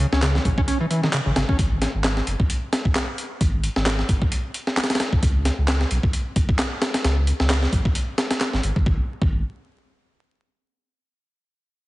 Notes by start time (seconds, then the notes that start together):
0.00 closed hi-hat
0.12 C#2 C#4, snare
0.22 C#3, snare, clap, closed hi-hat
0.35 F#3, snare
0.45 B1 C#3, kick, closed hi-hat
0.58 C#4, kick
0.68 C#4, closed hi-hat
0.80 E3
0.90 E3, closed hi-hat
1.03 D#3, snare
1.13 C#3, clap, closed hi-hat
1.26 G#1 C#3
1.36 G#1 C#3, snare, closed hi-hat
1.49 G#1 C#4, kick
1.59 G#1, kick, closed hi-hat
1.82 snare, closed hi-hat
1.94 G#1
2.04 snare, clap, closed hi-hat
2.17 snare
2.27 F#1, closed hi-hat
2.40 kick
2.50 closed hi-hat
2.73 snare, closed hi-hat
2.85 kick
2.95 snare, clap, closed hi-hat
3.18 closed hi-hat
3.41 G#1, kick, closed hi-hat
3.63 closed hi-hat
3.76 G#1, snare
3.86 snare, clap, closed hi-hat
3.99 snare
4.09 F#1, kick, closed hi-hat
4.22 kick
4.32 closed hi-hat
4.54 closed hi-hat
4.67 snare
4.77 snare, clap, closed hi-hat
4.84 snare, closed hi-hat
4.90 snare, closed hi-hat
4.95 snare, closed hi-hat
5.00 snare, closed hi-hat
5.13 kick
5.23 C#2, kick, closed hi-hat
5.45 snare, closed hi-hat
5.58 C#2
5.68 snare, clap, closed hi-hat
5.81 snare
5.91 B1, closed hi-hat
6.03 kick
6.13 closed hi-hat
6.36 kick, closed hi-hat
6.49 kick
6.59 snare, clap, closed hi-hat
6.82 snare, closed hi-hat
6.94 snare, closed hi-hat
7.04 C#2, snare, closed hi-hat
7.27 closed hi-hat
7.40 C#2, snare
7.50 snare, clap, closed hi-hat
7.63 snare
7.72 B1, kick, closed hi-hat
7.85 kick
7.95 closed hi-hat
8.18 snare, closed hi-hat
8.31 snare, closed hi-hat
8.41 snare, clap, closed hi-hat
8.53 G#1, snare
8.63 G#1, closed hi-hat
8.76 G#1, kick
8.86 G#1, kick
9.22 G#1, kick